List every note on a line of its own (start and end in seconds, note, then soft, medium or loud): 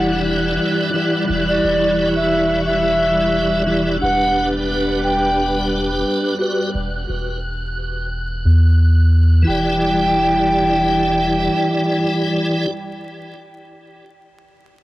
0.00 0.57 E1 loud
0.00 0.89 E3 medium
0.00 6.70 G3 medium
0.00 0.90 E4 medium
0.00 3.97 E4 medium
0.00 0.91 G4 medium
0.00 0.92 D5 medium
0.00 1.24 D5 medium
0.00 0.20 F#5 loud
0.00 9.48 F#6 medium
0.93 1.24 E3 medium
0.93 1.24 E4 medium
0.93 1.25 G4 medium
0.93 1.25 D5 medium
1.26 1.59 E1 loud
1.26 3.62 E3 medium
1.26 3.63 E4 medium
1.26 3.64 G4 medium
1.30 3.64 D5 medium
1.30 3.99 C#6 medium
1.48 2.08 D5 loud
1.63 3.98 E1 medium
2.16 2.61 E5 loud
2.66 3.89 E5 loud
3.66 3.97 E3 loud
3.66 3.97 E4 medium
3.66 3.98 G4 medium
3.66 3.98 D5 loud
3.99 6.03 E1 loud
3.99 6.35 D4 medium
3.99 6.36 G4 medium
3.99 4.48 F#5 loud
4.03 6.72 B4 medium
4.03 6.38 B4 medium
4.03 6.72 D5 medium
5.04 5.65 G5 loud
6.39 6.70 F#4 medium
6.39 6.70 G4 medium
6.39 6.71 B4 loud
6.74 7.04 E1 loud
7.09 8.44 E1 medium
8.45 9.44 E2 medium
9.42 12.66 E3 medium
9.42 12.69 G3 medium
9.42 12.68 E4 medium
9.42 12.70 E4 medium
9.42 12.69 D5 medium
9.47 11.48 E1 loud
9.47 12.71 G4 medium
9.47 12.73 D5 loud
9.47 12.71 G5 loud